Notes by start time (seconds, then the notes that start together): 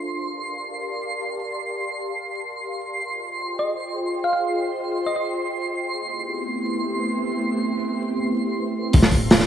Already playing: C6
0.09 G4 A#4 D5 F5 A5
3.04 F4 G#4 C5 D#5 G5
3.59 D#5
4.24 F5
4.33 F5
5.06 D#5
5.16 D#5
5.99 A3 B3 C4 E4 G4
8.93 D1 C6, kick, open hi-hat
9.02 snare
9.11 kick, open hi-hat
9.21 D4 F4 A4 C5 E5
9.30 snare, open hi-hat
9.39 snare